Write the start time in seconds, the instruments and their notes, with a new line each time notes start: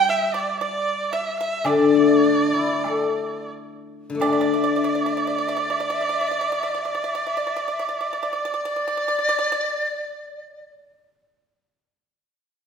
Already playing: guzheng G3, erhu G5
0.08 dizi E5, pipa E5, erhu E5
0.34 dizi D5, erhu D5, pipa D5
0.60 dizi D5, erhu D5, pipa D5
1.11 dizi E5, erhu E5, pipa E5
1.37 dizi E5, erhu E5, pipa E5
1.57 dizi E5
1.64 guzheng D3, dizi D5, erhu D5, pipa D5, high woodblock
1.94 guzheng A3
2.24 guzheng D4
2.54 guzheng E4
2.84 guzheng A4, high woodblock, low woodblock
4.10 guzheng D3
4.15 guzheng A3
4.20 guzheng D4, erhu D5, dizi D5, pipa D5, high woodblock
4.33 pipa D5, dizi E5
4.41 pipa D5, dizi D5
4.54 pipa D5, dizi E5
4.64 pipa D5, dizi D5
4.76 pipa D5, dizi E5
4.84 pipa D5
4.89 dizi D5
4.95 pipa D5
5.01 dizi E5
5.06 pipa D5
5.13 dizi D5, pipa D5
5.25 pipa D5, dizi E5
5.36 dizi D5, pipa D5
5.47 pipa D5, dizi E5
5.57 pipa D5, dizi D5
5.70 pipa D5, dizi E5
5.80 pipa D5, dizi D5
5.90 pipa D5, dizi E5
6.01 pipa D5, dizi D5
6.09 pipa D5
6.15 dizi E5
6.21 pipa D5
6.28 dizi D5, pipa D5
6.39 pipa D5, dizi E5
6.49 dizi D5, pipa D5
6.60 pipa D5, dizi E5
6.70 dizi D5
6.75 pipa D5
6.82 pipa D5, dizi E5
6.92 dizi D5, pipa D5
7.03 pipa D5, dizi E5
7.15 pipa D5, dizi D5
7.27 pipa D5, dizi E5
7.37 pipa D5, dizi D5
7.47 pipa D5, dizi E5
7.56 pipa D5
7.60 dizi D5
7.68 pipa D5
7.73 dizi E5
7.79 pipa D5
7.85 dizi D5, pipa D5
7.96 dizi E5
8.01 pipa D5
8.07 dizi D5
8.13 pipa D5
8.18 dizi E5
8.23 pipa D5
8.29 dizi D5
8.33 pipa D5
8.45 pipa D5
8.54 pipa D5
8.65 pipa D5
8.76 pipa D5
8.88 pipa D5
8.97 pipa D5
9.08 pipa D5
9.19 pipa D5
9.29 pipa D5
9.39 pipa D5
9.52 pipa D5